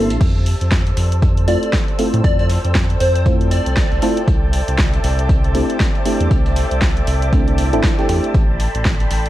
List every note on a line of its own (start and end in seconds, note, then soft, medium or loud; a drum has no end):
0.00 0.12 G1 medium
0.00 0.17 A#3 medium
0.00 0.20 A#3 medium
0.00 0.20 C4 medium
0.00 0.20 D4 medium
0.00 0.20 E4 medium
0.00 1.85 G4 medium
0.00 0.20 A4 medium
0.00 1.69 C5 medium
0.00 0.17 E5 medium
0.00 0.17 A5 medium
0.00 0.19 C6 medium
0.00 1.85 E6 medium
0.10 0.18 A#1 medium
0.10 closed hi-hat medium
0.21 0.55 F2 medium
0.21 9.29 A4 medium
0.21 4.24 C5 medium
0.21 9.29 A5 medium
0.21 4.24 E6 medium
0.21 kick loud
0.21 closed hi-hat medium
0.21 crash medium
0.36 9.29 D5 medium
0.46 closed hi-hat medium
0.46 open hi-hat loud
0.61 0.93 F2 medium
0.61 closed hi-hat medium
0.72 kick loud
0.72 snare loud
0.72 closed hi-hat medium
0.87 closed hi-hat soft
0.87 closed hi-hat medium
0.97 1.57 F2 medium
0.97 snare soft
0.97 closed hi-hat medium
0.97 open hi-hat loud
1.12 closed hi-hat medium
1.22 kick loud
1.22 closed hi-hat medium
1.38 closed hi-hat medium
1.48 1.73 A3 medium
1.48 1.73 C4 medium
1.48 1.73 E4 medium
1.48 1.73 F4 medium
1.48 1.73 A4 loud
1.48 1.70 D5 medium
1.48 9.29 G5 medium
1.48 closed hi-hat medium
1.48 open hi-hat loud
1.63 closed hi-hat medium
1.73 kick loud
1.73 snare loud
1.73 closed hi-hat medium
1.88 closed hi-hat soft
1.99 3.23 A3 medium
1.99 3.23 C4 medium
1.99 3.23 E4 medium
1.99 3.23 F4 medium
1.99 3.23 A4 medium
1.99 closed hi-hat medium
1.99 open hi-hat loud
2.14 2.21 A2 loud
2.14 closed hi-hat medium
2.24 2.58 F2 loud
2.24 2.34 D5 medium
2.24 kick loud
2.24 closed hi-hat medium
2.39 2.46 D5 medium
2.39 closed hi-hat soft
2.50 snare soft
2.50 closed hi-hat medium
2.50 open hi-hat loud
2.65 2.96 F2 medium
2.65 closed hi-hat medium
2.75 kick loud
2.75 snare loud
2.75 closed hi-hat medium
2.90 closed hi-hat medium
3.00 3.60 F2 medium
3.00 3.22 C5 loud
3.00 closed hi-hat medium
3.00 open hi-hat loud
3.15 closed hi-hat medium
3.26 4.00 A3 medium
3.26 4.00 C4 medium
3.26 4.00 E4 medium
3.26 4.00 F4 medium
3.26 4.00 C5 medium
3.26 kick loud
3.26 closed hi-hat medium
3.41 closed hi-hat soft
3.51 4.23 D5 loud
3.51 closed hi-hat medium
3.51 open hi-hat loud
3.66 3.84 C2 medium
3.66 closed hi-hat medium
3.77 kick loud
3.77 snare loud
3.77 closed hi-hat medium
3.92 3.99 C2 loud
3.92 snare soft
3.92 closed hi-hat soft
4.02 4.19 A3 medium
4.02 4.19 C4 medium
4.02 4.19 E4 medium
4.02 4.19 F4 medium
4.02 4.19 A4 medium
4.02 snare soft
4.02 closed hi-hat medium
4.02 open hi-hat loud
4.17 closed hi-hat medium
4.28 4.62 C2 loud
4.28 8.30 C5 medium
4.28 8.30 E5 medium
4.28 8.30 D6 medium
4.28 kick loud
4.28 closed hi-hat medium
4.53 closed hi-hat medium
4.53 open hi-hat loud
4.68 4.99 C2 medium
4.68 closed hi-hat medium
4.78 kick loud
4.78 snare loud
4.78 closed hi-hat medium
4.93 closed hi-hat soft
5.04 5.63 C2 medium
5.04 snare soft
5.04 closed hi-hat medium
5.04 open hi-hat loud
5.19 closed hi-hat medium
5.29 kick loud
5.29 closed hi-hat medium
5.44 closed hi-hat soft
5.55 5.79 A3 medium
5.55 5.79 C4 medium
5.55 5.79 D4 medium
5.55 5.79 E4 medium
5.55 5.79 G4 loud
5.55 closed hi-hat medium
5.55 open hi-hat loud
5.70 closed hi-hat medium
5.80 kick loud
5.80 snare loud
5.80 closed hi-hat medium
5.95 closed hi-hat soft
6.05 7.30 A3 medium
6.05 7.30 C4 medium
6.05 7.30 D4 medium
6.05 7.30 E4 medium
6.05 7.30 G4 medium
6.05 closed hi-hat medium
6.05 open hi-hat loud
6.21 6.28 E2 loud
6.21 closed hi-hat medium
6.31 6.65 C2 loud
6.31 kick loud
6.31 closed hi-hat medium
6.46 closed hi-hat soft
6.56 snare soft
6.56 closed hi-hat medium
6.56 open hi-hat loud
6.71 7.03 C2 medium
6.71 closed hi-hat medium
6.82 kick loud
6.82 snare loud
6.82 closed hi-hat medium
6.97 closed hi-hat soft
7.07 7.75 C2 medium
7.07 closed hi-hat medium
7.07 open hi-hat loud
7.22 closed hi-hat medium
7.33 7.70 A3 medium
7.33 7.70 C4 medium
7.33 7.70 D4 medium
7.33 7.70 E4 medium
7.33 7.70 A4 medium
7.33 kick loud
7.33 closed hi-hat medium
7.48 closed hi-hat soft
7.58 closed hi-hat medium
7.58 open hi-hat loud
7.73 7.81 G1 medium
7.73 7.95 A3 loud
7.73 7.95 C4 medium
7.73 7.95 D4 medium
7.73 7.95 E4 medium
7.73 7.95 A4 loud
7.73 closed hi-hat medium
7.83 kick loud
7.83 snare loud
7.83 closed hi-hat medium
7.99 8.07 A3 loud
7.99 8.07 C4 medium
7.99 8.07 D4 medium
7.99 8.07 E4 medium
7.99 8.07 G4 loud
7.99 snare soft
7.99 closed hi-hat soft
8.09 8.20 E2 medium
8.09 8.33 A3 medium
8.09 8.33 C4 medium
8.09 8.33 D4 medium
8.09 8.33 E4 medium
8.09 8.33 G4 loud
8.09 snare soft
8.09 closed hi-hat medium
8.09 open hi-hat loud
8.24 closed hi-hat medium
8.34 8.68 A1 medium
8.34 9.29 G5 medium
8.34 9.29 B5 medium
8.34 9.29 C6 medium
8.34 kick loud
8.34 closed hi-hat medium
8.60 closed hi-hat medium
8.60 open hi-hat loud
8.75 9.06 A1 medium
8.75 closed hi-hat medium
8.85 kick loud
8.85 snare loud
8.85 closed hi-hat medium
9.00 closed hi-hat soft
9.11 9.29 A1 medium
9.11 snare soft
9.11 closed hi-hat medium
9.11 open hi-hat loud
9.26 closed hi-hat medium